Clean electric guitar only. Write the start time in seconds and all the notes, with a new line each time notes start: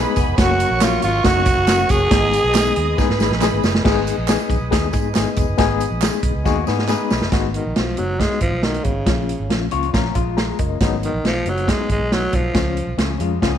Already playing: D#4 B4
0.17 B3 G#4
6.46 A#3 F#4
6.67 B3 G#4
6.89 D#4 B4
9.72 F4 C#5
9.94 C#4 A#4
10.15 G#3 F4
12.99 F3 C#4
13.21 G#3 F4
13.42 B3 G#4